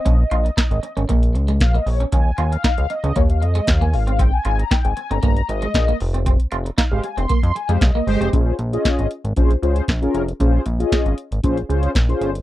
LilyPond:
<<
  \new Staff \with { instrumentName = "Analog polysynth" } { \time 4/4 \key bes \dorian \tempo 4 = 116 ees''4.~ ees''16 r4 r16 f''16 ees''16 des''8 | aes''8. f''8. ees''8 des''16 f''16 ees''8 f''16 aes''16 f''8 | g''16 aes''8 bes''16 g''16 aes''8 bes''8. ees''4 r8 | r4 f''8 aes''16 c'''8. aes''16 f''16 ees''4 |
<des' f' aes' c''>8 r16 <des' f' aes' ees''>8. r8 <des' f' aes' c''>16 r16 <des' f' aes' c''>8 r16 <des' f' aes' bes'>8 r16 | <des' f' aes' c''>8 r16 <des' f' aes' ees''>8. r8 <des' f' aes' c''>16 r16 <des' f' aes' c''>8 r16 <des' f' aes' c''>8 r16 | }
  \new Staff \with { instrumentName = "Analog polysynth" } { \time 4/4 \key bes \dorian r1 | r1 | r1 | r4 r16 <aes g' c''>16 r4 r16 <aes g' c''>16 r8 <aes g' c''>8 |
r1 | r1 | }
  \new Staff \with { instrumentName = "Clean electric guitar" } { \time 4/4 \key bes \dorian des'16 r16 f'16 r16 ees'16 r8 des'16 bes16 r8 aes16 r16 bes16 r16 des'16 | des'16 r16 f'16 r16 ees'16 r8 des'16 bes16 r8 aes16 r16 bes16 r16 c'16 | c'16 r16 f'16 r16 ees'16 r8 c'16 bes16 r8 aes16 r16 bes16 r16 c'16 | c'16 r16 f'16 r16 ees'16 r8 c'16 bes16 r8 aes16 r16 bes16 r16 c'16 |
r1 | r1 | }
  \new Staff \with { instrumentName = "Analog synth bass" } { \clef bass \time 4/4 \key bes \dorian bes,,8 bes,,8 r16 aes,,16 r16 aes,,16 bes,,8 des,8 bes,,8 bes,,8 | ees,8 ees,8 r16 des,16 r16 des,16 ees,8 f,8 ees,8 aes,,8~ | aes,,8 aes,,8 r16 aes,,16 r16 g,,16 g,,8 aes,,8 bes,,8 f,,8~ | f,,8 f,,8 r16 aes,,16 r16 f,,16 r16 f,16 r16 f,16 c,16 r16 g,,16 f,,16 |
bes,,8 bes,,8 r16 aes,,16 r16 aes,,16 bes,,8 des,8 bes,,8 f,,8 | bes,,8 bes,,8 r16 aes,,16 r16 aes,,16 bes,,8 des,8 bes,,8 g,,8 | }
  \new DrumStaff \with { instrumentName = "Drums" } \drummode { \time 4/4 <hh bd>8 hh16 hh16 <hh bd sn>16 hh16 hh16 hh16 <hh bd>16 hh16 hh16 hh16 <hh bd sn>16 hh16 hho16 hh16 | <hh bd>8 hh16 hh16 <hh bd sn>16 hh16 hh16 hh16 <hh bd>16 hh16 hh16 hh16 <hh bd sn>16 hh16 hho16 hh16 | <hh bd>8 hh16 hh16 <hh bd sn>16 hh16 hh16 hh16 <hh bd>16 hh16 hh16 hh16 <hh bd sn>16 hh16 hho16 hh16 | <hh bd>16 hh16 hh16 hh16 <hh bd sn>8 hh16 hh16 <hh bd>16 hh16 hh16 hh16 <hh bd sn>8 hho16 hh16 |
<hh bd>8 hh16 hh16 <hh bd sn>16 hh16 hh16 hh16 <hh bd>16 hh16 hh16 hh16 <hh bd sn>16 hh16 hh16 hh16 | <hh bd>8 hh16 hh16 <hh bd sn>16 hh16 hh16 hh16 <hh bd>16 hh16 hh16 hh16 <hh bd sn>16 hh16 hh16 hh16 | }
>>